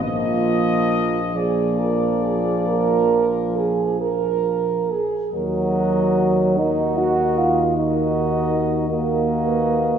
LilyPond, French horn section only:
\new Staff \with { instrumentName = "French horn section" } { \time 12/8 \key ees \minor \tempo 4. = 47 f'4. aes'8 bes'8 aes'8 bes'4 aes'8 bes'4 aes'8 | bes'4. bes'4. bes'4. bes'8. ces''8. | }